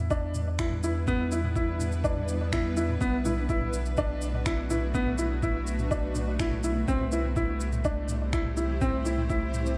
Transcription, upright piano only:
0, 0, Header, 1, 2, 480
1, 0, Start_track
1, 0, Key_signature, 1, "minor"
1, 0, Tempo, 483871
1, 1062, Time_signature, 4, 2, 24, 8
1, 9700, End_track
2, 0, Start_track
2, 0, Title_t, "Upright piano"
2, 0, Program_c, 0, 0
2, 106, Note_on_c, 0, 62, 87
2, 379, Note_off_c, 0, 62, 0
2, 589, Note_on_c, 0, 64, 78
2, 724, Note_off_c, 0, 64, 0
2, 830, Note_on_c, 0, 64, 76
2, 965, Note_off_c, 0, 64, 0
2, 1068, Note_on_c, 0, 59, 104
2, 1203, Note_off_c, 0, 59, 0
2, 1309, Note_on_c, 0, 64, 80
2, 1444, Note_off_c, 0, 64, 0
2, 1546, Note_on_c, 0, 64, 85
2, 1819, Note_off_c, 0, 64, 0
2, 2026, Note_on_c, 0, 62, 88
2, 2299, Note_off_c, 0, 62, 0
2, 2508, Note_on_c, 0, 64, 85
2, 2644, Note_off_c, 0, 64, 0
2, 2745, Note_on_c, 0, 64, 79
2, 2881, Note_off_c, 0, 64, 0
2, 2985, Note_on_c, 0, 59, 97
2, 3122, Note_off_c, 0, 59, 0
2, 3226, Note_on_c, 0, 64, 76
2, 3362, Note_off_c, 0, 64, 0
2, 3468, Note_on_c, 0, 64, 92
2, 3740, Note_off_c, 0, 64, 0
2, 3948, Note_on_c, 0, 62, 96
2, 4220, Note_off_c, 0, 62, 0
2, 4427, Note_on_c, 0, 64, 83
2, 4563, Note_off_c, 0, 64, 0
2, 4664, Note_on_c, 0, 64, 78
2, 4801, Note_off_c, 0, 64, 0
2, 4905, Note_on_c, 0, 59, 98
2, 5042, Note_off_c, 0, 59, 0
2, 5143, Note_on_c, 0, 64, 78
2, 5280, Note_off_c, 0, 64, 0
2, 5386, Note_on_c, 0, 64, 88
2, 5659, Note_off_c, 0, 64, 0
2, 5863, Note_on_c, 0, 62, 84
2, 6137, Note_off_c, 0, 62, 0
2, 6348, Note_on_c, 0, 64, 78
2, 6484, Note_off_c, 0, 64, 0
2, 6587, Note_on_c, 0, 64, 76
2, 6723, Note_off_c, 0, 64, 0
2, 6827, Note_on_c, 0, 60, 99
2, 6963, Note_off_c, 0, 60, 0
2, 7067, Note_on_c, 0, 64, 76
2, 7203, Note_off_c, 0, 64, 0
2, 7304, Note_on_c, 0, 64, 88
2, 7578, Note_off_c, 0, 64, 0
2, 7786, Note_on_c, 0, 62, 84
2, 8059, Note_off_c, 0, 62, 0
2, 8264, Note_on_c, 0, 64, 79
2, 8401, Note_off_c, 0, 64, 0
2, 8500, Note_on_c, 0, 64, 77
2, 8638, Note_off_c, 0, 64, 0
2, 8744, Note_on_c, 0, 60, 100
2, 8881, Note_off_c, 0, 60, 0
2, 8984, Note_on_c, 0, 64, 75
2, 9121, Note_off_c, 0, 64, 0
2, 9223, Note_on_c, 0, 64, 87
2, 9497, Note_off_c, 0, 64, 0
2, 9700, End_track
0, 0, End_of_file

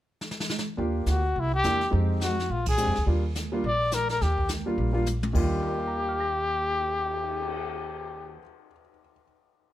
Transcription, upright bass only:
0, 0, Header, 1, 2, 480
1, 0, Start_track
1, 0, Key_signature, -3, "major"
1, 0, Tempo, 284900
1, 1306, Time_signature, 4, 2, 24, 8
1, 16393, End_track
2, 0, Start_track
2, 0, Title_t, "Upright bass"
2, 0, Program_c, 0, 32
2, 1321, Note_on_c, 0, 39, 70
2, 1763, Note_off_c, 0, 39, 0
2, 1790, Note_on_c, 0, 38, 64
2, 2239, Note_off_c, 0, 38, 0
2, 2288, Note_on_c, 0, 36, 75
2, 2730, Note_off_c, 0, 36, 0
2, 2760, Note_on_c, 0, 40, 69
2, 3207, Note_off_c, 0, 40, 0
2, 3246, Note_on_c, 0, 41, 80
2, 4160, Note_off_c, 0, 41, 0
2, 4209, Note_on_c, 0, 34, 74
2, 4805, Note_off_c, 0, 34, 0
2, 4844, Note_on_c, 0, 41, 53
2, 4995, Note_off_c, 0, 41, 0
2, 5015, Note_on_c, 0, 38, 62
2, 5162, Note_off_c, 0, 38, 0
2, 5168, Note_on_c, 0, 39, 76
2, 6084, Note_off_c, 0, 39, 0
2, 6131, Note_on_c, 0, 34, 76
2, 7046, Note_off_c, 0, 34, 0
2, 7100, Note_on_c, 0, 39, 75
2, 8009, Note_off_c, 0, 39, 0
2, 8051, Note_on_c, 0, 34, 76
2, 8963, Note_off_c, 0, 34, 0
2, 9010, Note_on_c, 0, 39, 74
2, 14101, Note_off_c, 0, 39, 0
2, 16393, End_track
0, 0, End_of_file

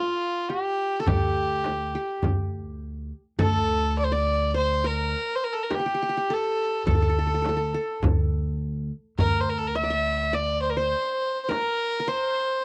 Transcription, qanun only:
0, 0, Header, 1, 2, 480
1, 0, Start_track
1, 0, Tempo, 1158301
1, 1405, Time_signature, 10, 3, 24, 8
1, 5241, End_track
2, 0, Start_track
2, 0, Title_t, "Qanun"
2, 0, Program_c, 0, 107
2, 0, Note_on_c, 0, 65, 52
2, 0, Note_on_c, 0, 69, 68
2, 148, Note_off_c, 0, 69, 0
2, 205, Note_on_c, 0, 67, 62
2, 413, Note_on_c, 0, 69, 54
2, 443, Note_off_c, 0, 67, 0
2, 445, Note_on_c, 0, 67, 62
2, 526, Note_off_c, 0, 65, 0
2, 807, Note_off_c, 0, 67, 0
2, 808, Note_on_c, 0, 67, 49
2, 898, Note_off_c, 0, 69, 0
2, 1329, Note_off_c, 0, 67, 0
2, 1404, Note_on_c, 0, 69, 75
2, 1707, Note_on_c, 0, 74, 64
2, 1883, Note_on_c, 0, 72, 67
2, 1889, Note_off_c, 0, 69, 0
2, 2006, Note_on_c, 0, 70, 66
2, 2116, Note_off_c, 0, 74, 0
2, 2321, Note_off_c, 0, 72, 0
2, 2363, Note_on_c, 0, 67, 56
2, 2399, Note_off_c, 0, 67, 0
2, 2400, Note_on_c, 0, 67, 43
2, 2426, Note_off_c, 0, 67, 0
2, 2427, Note_on_c, 0, 67, 46
2, 2461, Note_off_c, 0, 67, 0
2, 2463, Note_on_c, 0, 67, 44
2, 2477, Note_off_c, 0, 70, 0
2, 2494, Note_off_c, 0, 67, 0
2, 2496, Note_on_c, 0, 67, 50
2, 2522, Note_off_c, 0, 67, 0
2, 2524, Note_on_c, 0, 67, 44
2, 2556, Note_off_c, 0, 67, 0
2, 2557, Note_on_c, 0, 67, 51
2, 2611, Note_on_c, 0, 69, 63
2, 2844, Note_off_c, 0, 69, 0
2, 2846, Note_on_c, 0, 69, 65
2, 2879, Note_off_c, 0, 69, 0
2, 2880, Note_on_c, 0, 69, 46
2, 2909, Note_off_c, 0, 69, 0
2, 2910, Note_on_c, 0, 69, 50
2, 2938, Note_off_c, 0, 69, 0
2, 2940, Note_on_c, 0, 69, 41
2, 2976, Note_off_c, 0, 69, 0
2, 2978, Note_on_c, 0, 69, 45
2, 3011, Note_off_c, 0, 69, 0
2, 3012, Note_on_c, 0, 69, 36
2, 3041, Note_off_c, 0, 69, 0
2, 3043, Note_on_c, 0, 69, 45
2, 3073, Note_off_c, 0, 69, 0
2, 3075, Note_on_c, 0, 69, 38
2, 3078, Note_off_c, 0, 67, 0
2, 3101, Note_off_c, 0, 69, 0
2, 3103, Note_on_c, 0, 69, 46
2, 3134, Note_off_c, 0, 69, 0
2, 3135, Note_on_c, 0, 69, 44
2, 3207, Note_off_c, 0, 69, 0
2, 3209, Note_on_c, 0, 69, 51
2, 3694, Note_off_c, 0, 69, 0
2, 3813, Note_on_c, 0, 70, 69
2, 4042, Note_on_c, 0, 76, 67
2, 4075, Note_on_c, 0, 74, 54
2, 4102, Note_off_c, 0, 76, 0
2, 4104, Note_on_c, 0, 76, 64
2, 4280, Note_off_c, 0, 74, 0
2, 4281, Note_on_c, 0, 74, 72
2, 4283, Note_off_c, 0, 70, 0
2, 4463, Note_on_c, 0, 72, 68
2, 4488, Note_off_c, 0, 76, 0
2, 4690, Note_off_c, 0, 74, 0
2, 4759, Note_on_c, 0, 70, 60
2, 4901, Note_off_c, 0, 72, 0
2, 4970, Note_off_c, 0, 70, 0
2, 4972, Note_on_c, 0, 70, 53
2, 5005, Note_on_c, 0, 72, 71
2, 5241, Note_off_c, 0, 70, 0
2, 5241, Note_off_c, 0, 72, 0
2, 5241, End_track
0, 0, End_of_file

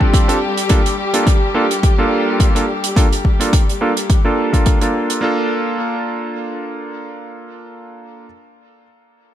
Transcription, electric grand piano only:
0, 0, Header, 1, 2, 480
1, 0, Start_track
1, 0, Tempo, 566038
1, 596, Time_signature, 4, 2, 24, 8
1, 7921, End_track
2, 0, Start_track
2, 0, Title_t, "Electric grand piano"
2, 0, Program_c, 0, 2
2, 0, Note_on_c, 0, 60, 85
2, 0, Note_on_c, 0, 62, 78
2, 0, Note_on_c, 0, 65, 77
2, 0, Note_on_c, 0, 69, 94
2, 211, Note_off_c, 0, 60, 0
2, 213, Note_off_c, 0, 62, 0
2, 215, Note_off_c, 0, 65, 0
2, 216, Note_off_c, 0, 69, 0
2, 238, Note_on_c, 0, 60, 71
2, 240, Note_on_c, 0, 62, 65
2, 243, Note_on_c, 0, 65, 65
2, 246, Note_on_c, 0, 69, 78
2, 308, Note_off_c, 0, 60, 0
2, 309, Note_off_c, 0, 62, 0
2, 311, Note_off_c, 0, 65, 0
2, 312, Note_off_c, 0, 69, 0
2, 587, Note_on_c, 0, 58, 79
2, 589, Note_on_c, 0, 62, 73
2, 592, Note_on_c, 0, 65, 70
2, 595, Note_on_c, 0, 69, 84
2, 670, Note_off_c, 0, 58, 0
2, 671, Note_off_c, 0, 62, 0
2, 673, Note_off_c, 0, 65, 0
2, 674, Note_off_c, 0, 69, 0
2, 962, Note_on_c, 0, 58, 75
2, 964, Note_on_c, 0, 62, 68
2, 967, Note_on_c, 0, 65, 69
2, 971, Note_on_c, 0, 69, 84
2, 1069, Note_off_c, 0, 58, 0
2, 1070, Note_off_c, 0, 62, 0
2, 1072, Note_off_c, 0, 65, 0
2, 1074, Note_off_c, 0, 69, 0
2, 1309, Note_on_c, 0, 58, 89
2, 1312, Note_on_c, 0, 62, 81
2, 1316, Note_on_c, 0, 65, 81
2, 1317, Note_on_c, 0, 69, 96
2, 1392, Note_off_c, 0, 58, 0
2, 1393, Note_off_c, 0, 62, 0
2, 1395, Note_off_c, 0, 65, 0
2, 1396, Note_off_c, 0, 69, 0
2, 1682, Note_on_c, 0, 58, 85
2, 1684, Note_on_c, 0, 62, 77
2, 1687, Note_on_c, 0, 65, 77
2, 1689, Note_on_c, 0, 69, 92
2, 2133, Note_off_c, 0, 58, 0
2, 2134, Note_off_c, 0, 62, 0
2, 2136, Note_off_c, 0, 65, 0
2, 2137, Note_off_c, 0, 69, 0
2, 2162, Note_on_c, 0, 58, 71
2, 2164, Note_on_c, 0, 62, 65
2, 2167, Note_on_c, 0, 65, 65
2, 2170, Note_on_c, 0, 69, 77
2, 2230, Note_off_c, 0, 58, 0
2, 2231, Note_off_c, 0, 62, 0
2, 2233, Note_off_c, 0, 65, 0
2, 2234, Note_off_c, 0, 69, 0
2, 2510, Note_on_c, 0, 58, 75
2, 2512, Note_on_c, 0, 62, 70
2, 2515, Note_on_c, 0, 65, 70
2, 2517, Note_on_c, 0, 69, 84
2, 2592, Note_off_c, 0, 58, 0
2, 2593, Note_off_c, 0, 62, 0
2, 2594, Note_off_c, 0, 65, 0
2, 2596, Note_off_c, 0, 69, 0
2, 2879, Note_on_c, 0, 58, 71
2, 2883, Note_on_c, 0, 62, 66
2, 2886, Note_on_c, 0, 65, 68
2, 2888, Note_on_c, 0, 69, 80
2, 2988, Note_off_c, 0, 58, 0
2, 2990, Note_off_c, 0, 62, 0
2, 2991, Note_off_c, 0, 65, 0
2, 2993, Note_off_c, 0, 69, 0
2, 3230, Note_on_c, 0, 58, 87
2, 3233, Note_on_c, 0, 62, 80
2, 3236, Note_on_c, 0, 65, 78
2, 3238, Note_on_c, 0, 69, 94
2, 3312, Note_off_c, 0, 58, 0
2, 3313, Note_off_c, 0, 62, 0
2, 3315, Note_off_c, 0, 65, 0
2, 3316, Note_off_c, 0, 69, 0
2, 3600, Note_on_c, 0, 58, 83
2, 3602, Note_on_c, 0, 62, 77
2, 3605, Note_on_c, 0, 65, 75
2, 3608, Note_on_c, 0, 69, 92
2, 3817, Note_off_c, 0, 58, 0
2, 3819, Note_off_c, 0, 62, 0
2, 3820, Note_off_c, 0, 65, 0
2, 3821, Note_off_c, 0, 69, 0
2, 3839, Note_on_c, 0, 58, 70
2, 3840, Note_on_c, 0, 62, 63
2, 3845, Note_on_c, 0, 65, 65
2, 3846, Note_on_c, 0, 69, 78
2, 4051, Note_off_c, 0, 58, 0
2, 4052, Note_off_c, 0, 62, 0
2, 4054, Note_off_c, 0, 65, 0
2, 4055, Note_off_c, 0, 69, 0
2, 4080, Note_on_c, 0, 58, 69
2, 4083, Note_on_c, 0, 62, 64
2, 4084, Note_on_c, 0, 65, 63
2, 4088, Note_on_c, 0, 69, 75
2, 4405, Note_off_c, 0, 58, 0
2, 4408, Note_off_c, 0, 62, 0
2, 4408, Note_off_c, 0, 65, 0
2, 4410, Note_off_c, 0, 69, 0
2, 4418, Note_on_c, 0, 58, 77
2, 4427, Note_on_c, 0, 62, 69
2, 4434, Note_on_c, 0, 65, 70
2, 4444, Note_on_c, 0, 69, 82
2, 6991, Note_off_c, 0, 58, 0
2, 6996, Note_off_c, 0, 62, 0
2, 6999, Note_off_c, 0, 65, 0
2, 7004, Note_off_c, 0, 69, 0
2, 7921, End_track
0, 0, End_of_file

